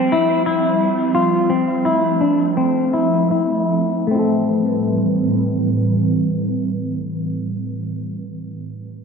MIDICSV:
0, 0, Header, 1, 3, 480
1, 0, Start_track
1, 0, Key_signature, 0, "minor"
1, 0, Tempo, 689655
1, 799, Time_signature, 4, 2, 24, 8
1, 1287, Tempo, 729040
1, 2247, Tempo, 774194
1, 5804, End_track
2, 0, Start_track
2, 0, Title_t, "Clean electric guitar"
2, 0, Program_c, 0, 27
2, 0, Note_on_c, 0, 60, 77
2, 84, Note_off_c, 0, 60, 0
2, 85, Note_on_c, 0, 64, 65
2, 313, Note_off_c, 0, 64, 0
2, 321, Note_on_c, 0, 64, 65
2, 795, Note_off_c, 0, 64, 0
2, 798, Note_on_c, 0, 65, 75
2, 1041, Note_off_c, 0, 65, 0
2, 1042, Note_on_c, 0, 60, 63
2, 1287, Note_off_c, 0, 60, 0
2, 1288, Note_on_c, 0, 64, 65
2, 1523, Note_off_c, 0, 64, 0
2, 1523, Note_on_c, 0, 62, 66
2, 1759, Note_off_c, 0, 62, 0
2, 1762, Note_on_c, 0, 60, 72
2, 2002, Note_on_c, 0, 64, 57
2, 2003, Note_off_c, 0, 60, 0
2, 2242, Note_off_c, 0, 64, 0
2, 2250, Note_on_c, 0, 64, 64
2, 2721, Note_off_c, 0, 64, 0
2, 2721, Note_on_c, 0, 57, 57
2, 2746, Note_on_c, 0, 60, 59
2, 2770, Note_on_c, 0, 64, 59
2, 2793, Note_off_c, 0, 64, 0
2, 2795, Note_on_c, 0, 69, 58
2, 5046, Note_off_c, 0, 57, 0
2, 5071, Note_off_c, 0, 60, 0
2, 5120, Note_off_c, 0, 69, 0
2, 5804, End_track
3, 0, Start_track
3, 0, Title_t, "Ambient pad"
3, 0, Program_c, 1, 92
3, 0, Note_on_c, 1, 53, 72
3, 0, Note_on_c, 1, 55, 73
3, 0, Note_on_c, 1, 60, 74
3, 771, Note_off_c, 1, 55, 0
3, 800, Note_on_c, 1, 57, 70
3, 2695, Note_off_c, 1, 53, 0
3, 2695, Note_off_c, 1, 60, 0
3, 2703, Note_off_c, 1, 57, 0
3, 2720, Note_on_c, 1, 52, 63
3, 2721, Note_on_c, 1, 55, 62
3, 2721, Note_on_c, 1, 71, 73
3, 2722, Note_on_c, 1, 45, 68
3, 2723, Note_on_c, 1, 60, 63
3, 5045, Note_off_c, 1, 52, 0
3, 5046, Note_off_c, 1, 55, 0
3, 5046, Note_off_c, 1, 71, 0
3, 5047, Note_off_c, 1, 45, 0
3, 5048, Note_off_c, 1, 60, 0
3, 5804, End_track
0, 0, End_of_file